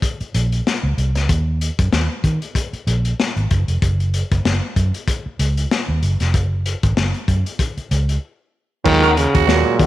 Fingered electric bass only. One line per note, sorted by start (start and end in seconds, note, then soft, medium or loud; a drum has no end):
0.21 muted fingered electric bass stroke soft
0.35 0.60 A#1 medium
0.83 0.95 C#2 medium
0.98 1.15 C2 medium
1.15 1.26 C#2 medium
1.29 1.69 D#2 loud
1.79 1.90 F#2 medium
1.92 2.06 D#2 medium
2.24 2.38 D#3 loud
2.73 muted fingered electric bass stroke soft
2.87 3.12 A#1 medium
3.36 3.47 G#1 medium
3.51 3.65 F#1 medium
3.68 3.79 F1 medium
3.82 4.21 F#1 loud
4.32 4.42 F#1 medium
4.45 4.59 F#1 medium
4.76 4.90 F#2 medium
5.26 muted fingered electric bass stroke soft
5.39 5.65 C#2 medium
5.88 6.00 D#2 medium
6.02 6.16 F#1 medium
6.20 6.34 F1 medium
6.34 6.73 F#1 medium
6.83 6.94 G#1 medium
6.97 7.11 F#1 loud
7.28 7.42 F#2 medium
7.77 muted fingered electric bass stroke soft
7.91 8.16 C#2 medium
8.85 9.25 D#2 loud
9.35 9.46 D#2 loud
9.48 9.62 D#2 loud
9.79 9.86 D#3 loud